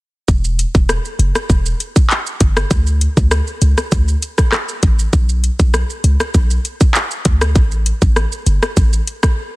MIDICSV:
0, 0, Header, 1, 3, 480
1, 0, Start_track
1, 0, Key_signature, 2, "minor"
1, 0, Tempo, 606061
1, 225, Time_signature, 4, 2, 24, 8
1, 7572, End_track
2, 0, Start_track
2, 0, Title_t, "808-style bass"
2, 0, Program_c, 0, 38
2, 224, Note_on_c, 0, 28, 117
2, 515, Note_off_c, 0, 28, 0
2, 592, Note_on_c, 0, 28, 94
2, 782, Note_off_c, 0, 28, 0
2, 943, Note_on_c, 0, 30, 97
2, 1044, Note_off_c, 0, 30, 0
2, 1185, Note_on_c, 0, 28, 108
2, 1374, Note_off_c, 0, 28, 0
2, 1906, Note_on_c, 0, 31, 94
2, 2095, Note_off_c, 0, 31, 0
2, 2144, Note_on_c, 0, 38, 108
2, 2435, Note_off_c, 0, 38, 0
2, 2511, Note_on_c, 0, 38, 107
2, 2701, Note_off_c, 0, 38, 0
2, 2865, Note_on_c, 0, 37, 87
2, 2965, Note_off_c, 0, 37, 0
2, 3105, Note_on_c, 0, 38, 120
2, 3294, Note_off_c, 0, 38, 0
2, 3824, Note_on_c, 0, 33, 88
2, 4014, Note_off_c, 0, 33, 0
2, 4064, Note_on_c, 0, 35, 107
2, 4354, Note_off_c, 0, 35, 0
2, 4431, Note_on_c, 0, 35, 103
2, 4621, Note_off_c, 0, 35, 0
2, 4784, Note_on_c, 0, 37, 88
2, 4885, Note_off_c, 0, 37, 0
2, 5025, Note_on_c, 0, 35, 112
2, 5215, Note_off_c, 0, 35, 0
2, 5745, Note_on_c, 0, 38, 91
2, 5983, Note_on_c, 0, 33, 106
2, 5995, Note_off_c, 0, 38, 0
2, 6274, Note_off_c, 0, 33, 0
2, 6351, Note_on_c, 0, 33, 106
2, 6541, Note_off_c, 0, 33, 0
2, 6704, Note_on_c, 0, 31, 93
2, 6805, Note_off_c, 0, 31, 0
2, 6945, Note_on_c, 0, 33, 106
2, 7134, Note_off_c, 0, 33, 0
2, 7572, End_track
3, 0, Start_track
3, 0, Title_t, "Drums"
3, 224, Note_on_c, 9, 36, 118
3, 224, Note_on_c, 9, 82, 79
3, 303, Note_off_c, 9, 82, 0
3, 304, Note_off_c, 9, 36, 0
3, 352, Note_on_c, 9, 82, 59
3, 431, Note_off_c, 9, 82, 0
3, 468, Note_on_c, 9, 42, 76
3, 468, Note_on_c, 9, 82, 55
3, 547, Note_off_c, 9, 42, 0
3, 547, Note_off_c, 9, 82, 0
3, 592, Note_on_c, 9, 36, 97
3, 592, Note_on_c, 9, 82, 66
3, 671, Note_off_c, 9, 36, 0
3, 671, Note_off_c, 9, 82, 0
3, 706, Note_on_c, 9, 37, 92
3, 706, Note_on_c, 9, 82, 78
3, 786, Note_off_c, 9, 37, 0
3, 786, Note_off_c, 9, 82, 0
3, 832, Note_on_c, 9, 82, 44
3, 912, Note_off_c, 9, 82, 0
3, 946, Note_on_c, 9, 42, 71
3, 946, Note_on_c, 9, 82, 51
3, 1025, Note_off_c, 9, 42, 0
3, 1025, Note_off_c, 9, 82, 0
3, 1073, Note_on_c, 9, 37, 99
3, 1073, Note_on_c, 9, 82, 77
3, 1152, Note_off_c, 9, 37, 0
3, 1152, Note_off_c, 9, 82, 0
3, 1184, Note_on_c, 9, 82, 82
3, 1185, Note_on_c, 9, 36, 92
3, 1263, Note_off_c, 9, 82, 0
3, 1264, Note_off_c, 9, 36, 0
3, 1313, Note_on_c, 9, 82, 58
3, 1392, Note_off_c, 9, 82, 0
3, 1428, Note_on_c, 9, 42, 71
3, 1428, Note_on_c, 9, 82, 51
3, 1507, Note_off_c, 9, 42, 0
3, 1507, Note_off_c, 9, 82, 0
3, 1552, Note_on_c, 9, 36, 92
3, 1552, Note_on_c, 9, 82, 84
3, 1631, Note_off_c, 9, 36, 0
3, 1632, Note_off_c, 9, 82, 0
3, 1665, Note_on_c, 9, 39, 95
3, 1668, Note_on_c, 9, 82, 75
3, 1745, Note_off_c, 9, 39, 0
3, 1748, Note_off_c, 9, 82, 0
3, 1794, Note_on_c, 9, 82, 48
3, 1873, Note_off_c, 9, 82, 0
3, 1904, Note_on_c, 9, 42, 74
3, 1904, Note_on_c, 9, 82, 53
3, 1906, Note_on_c, 9, 36, 96
3, 1984, Note_off_c, 9, 42, 0
3, 1984, Note_off_c, 9, 82, 0
3, 1985, Note_off_c, 9, 36, 0
3, 2033, Note_on_c, 9, 37, 101
3, 2033, Note_on_c, 9, 82, 73
3, 2112, Note_off_c, 9, 37, 0
3, 2112, Note_off_c, 9, 82, 0
3, 2144, Note_on_c, 9, 36, 118
3, 2144, Note_on_c, 9, 82, 82
3, 2223, Note_off_c, 9, 36, 0
3, 2223, Note_off_c, 9, 82, 0
3, 2270, Note_on_c, 9, 82, 56
3, 2349, Note_off_c, 9, 82, 0
3, 2386, Note_on_c, 9, 42, 75
3, 2386, Note_on_c, 9, 82, 55
3, 2465, Note_off_c, 9, 42, 0
3, 2465, Note_off_c, 9, 82, 0
3, 2511, Note_on_c, 9, 36, 99
3, 2511, Note_on_c, 9, 82, 65
3, 2590, Note_off_c, 9, 82, 0
3, 2591, Note_off_c, 9, 36, 0
3, 2624, Note_on_c, 9, 37, 97
3, 2624, Note_on_c, 9, 82, 77
3, 2703, Note_off_c, 9, 37, 0
3, 2703, Note_off_c, 9, 82, 0
3, 2750, Note_on_c, 9, 82, 44
3, 2829, Note_off_c, 9, 82, 0
3, 2863, Note_on_c, 9, 42, 74
3, 2863, Note_on_c, 9, 82, 54
3, 2943, Note_off_c, 9, 42, 0
3, 2943, Note_off_c, 9, 82, 0
3, 2991, Note_on_c, 9, 37, 93
3, 2992, Note_on_c, 9, 82, 75
3, 3071, Note_off_c, 9, 37, 0
3, 3071, Note_off_c, 9, 82, 0
3, 3103, Note_on_c, 9, 82, 88
3, 3104, Note_on_c, 9, 36, 95
3, 3182, Note_off_c, 9, 82, 0
3, 3184, Note_off_c, 9, 36, 0
3, 3232, Note_on_c, 9, 82, 56
3, 3311, Note_off_c, 9, 82, 0
3, 3346, Note_on_c, 9, 42, 69
3, 3346, Note_on_c, 9, 82, 51
3, 3425, Note_off_c, 9, 42, 0
3, 3425, Note_off_c, 9, 82, 0
3, 3470, Note_on_c, 9, 37, 91
3, 3470, Note_on_c, 9, 82, 86
3, 3471, Note_on_c, 9, 36, 96
3, 3549, Note_off_c, 9, 37, 0
3, 3550, Note_off_c, 9, 82, 0
3, 3551, Note_off_c, 9, 36, 0
3, 3583, Note_on_c, 9, 37, 90
3, 3583, Note_on_c, 9, 39, 86
3, 3586, Note_on_c, 9, 82, 72
3, 3662, Note_off_c, 9, 37, 0
3, 3662, Note_off_c, 9, 39, 0
3, 3665, Note_off_c, 9, 82, 0
3, 3711, Note_on_c, 9, 82, 48
3, 3790, Note_off_c, 9, 82, 0
3, 3823, Note_on_c, 9, 42, 70
3, 3823, Note_on_c, 9, 82, 54
3, 3825, Note_on_c, 9, 36, 93
3, 3902, Note_off_c, 9, 42, 0
3, 3902, Note_off_c, 9, 82, 0
3, 3904, Note_off_c, 9, 36, 0
3, 3952, Note_on_c, 9, 82, 74
3, 4031, Note_off_c, 9, 82, 0
3, 4064, Note_on_c, 9, 36, 122
3, 4064, Note_on_c, 9, 82, 82
3, 4143, Note_off_c, 9, 36, 0
3, 4143, Note_off_c, 9, 82, 0
3, 4190, Note_on_c, 9, 82, 56
3, 4270, Note_off_c, 9, 82, 0
3, 4306, Note_on_c, 9, 42, 75
3, 4306, Note_on_c, 9, 82, 52
3, 4385, Note_off_c, 9, 42, 0
3, 4385, Note_off_c, 9, 82, 0
3, 4431, Note_on_c, 9, 36, 102
3, 4431, Note_on_c, 9, 82, 68
3, 4510, Note_off_c, 9, 82, 0
3, 4511, Note_off_c, 9, 36, 0
3, 4545, Note_on_c, 9, 37, 90
3, 4545, Note_on_c, 9, 82, 74
3, 4624, Note_off_c, 9, 37, 0
3, 4624, Note_off_c, 9, 82, 0
3, 4671, Note_on_c, 9, 82, 45
3, 4751, Note_off_c, 9, 82, 0
3, 4784, Note_on_c, 9, 42, 73
3, 4784, Note_on_c, 9, 82, 51
3, 4863, Note_off_c, 9, 42, 0
3, 4863, Note_off_c, 9, 82, 0
3, 4912, Note_on_c, 9, 37, 99
3, 4913, Note_on_c, 9, 82, 74
3, 4992, Note_off_c, 9, 37, 0
3, 4992, Note_off_c, 9, 82, 0
3, 5023, Note_on_c, 9, 82, 89
3, 5025, Note_on_c, 9, 36, 89
3, 5102, Note_off_c, 9, 82, 0
3, 5104, Note_off_c, 9, 36, 0
3, 5151, Note_on_c, 9, 82, 57
3, 5231, Note_off_c, 9, 82, 0
3, 5266, Note_on_c, 9, 42, 70
3, 5266, Note_on_c, 9, 82, 52
3, 5346, Note_off_c, 9, 42, 0
3, 5346, Note_off_c, 9, 82, 0
3, 5390, Note_on_c, 9, 82, 83
3, 5391, Note_on_c, 9, 36, 97
3, 5469, Note_off_c, 9, 82, 0
3, 5470, Note_off_c, 9, 36, 0
3, 5502, Note_on_c, 9, 39, 92
3, 5505, Note_on_c, 9, 82, 75
3, 5582, Note_off_c, 9, 39, 0
3, 5585, Note_off_c, 9, 82, 0
3, 5631, Note_on_c, 9, 82, 47
3, 5711, Note_off_c, 9, 82, 0
3, 5742, Note_on_c, 9, 42, 74
3, 5742, Note_on_c, 9, 82, 51
3, 5745, Note_on_c, 9, 36, 94
3, 5821, Note_off_c, 9, 42, 0
3, 5821, Note_off_c, 9, 82, 0
3, 5824, Note_off_c, 9, 36, 0
3, 5872, Note_on_c, 9, 37, 105
3, 5872, Note_on_c, 9, 82, 74
3, 5951, Note_off_c, 9, 37, 0
3, 5951, Note_off_c, 9, 82, 0
3, 5983, Note_on_c, 9, 36, 123
3, 5983, Note_on_c, 9, 82, 81
3, 6062, Note_off_c, 9, 82, 0
3, 6063, Note_off_c, 9, 36, 0
3, 6109, Note_on_c, 9, 82, 56
3, 6189, Note_off_c, 9, 82, 0
3, 6225, Note_on_c, 9, 42, 75
3, 6225, Note_on_c, 9, 82, 52
3, 6305, Note_off_c, 9, 42, 0
3, 6305, Note_off_c, 9, 82, 0
3, 6350, Note_on_c, 9, 82, 66
3, 6351, Note_on_c, 9, 36, 99
3, 6429, Note_off_c, 9, 82, 0
3, 6430, Note_off_c, 9, 36, 0
3, 6465, Note_on_c, 9, 37, 92
3, 6465, Note_on_c, 9, 82, 74
3, 6544, Note_off_c, 9, 37, 0
3, 6544, Note_off_c, 9, 82, 0
3, 6591, Note_on_c, 9, 82, 47
3, 6670, Note_off_c, 9, 82, 0
3, 6704, Note_on_c, 9, 42, 69
3, 6704, Note_on_c, 9, 82, 53
3, 6783, Note_off_c, 9, 42, 0
3, 6783, Note_off_c, 9, 82, 0
3, 6832, Note_on_c, 9, 37, 95
3, 6832, Note_on_c, 9, 82, 75
3, 6911, Note_off_c, 9, 37, 0
3, 6911, Note_off_c, 9, 82, 0
3, 6943, Note_on_c, 9, 82, 86
3, 6945, Note_on_c, 9, 36, 92
3, 7023, Note_off_c, 9, 82, 0
3, 7024, Note_off_c, 9, 36, 0
3, 7072, Note_on_c, 9, 82, 57
3, 7152, Note_off_c, 9, 82, 0
3, 7187, Note_on_c, 9, 42, 71
3, 7187, Note_on_c, 9, 82, 50
3, 7266, Note_off_c, 9, 42, 0
3, 7266, Note_off_c, 9, 82, 0
3, 7311, Note_on_c, 9, 37, 96
3, 7311, Note_on_c, 9, 82, 80
3, 7312, Note_on_c, 9, 36, 94
3, 7390, Note_off_c, 9, 37, 0
3, 7391, Note_off_c, 9, 36, 0
3, 7391, Note_off_c, 9, 82, 0
3, 7572, End_track
0, 0, End_of_file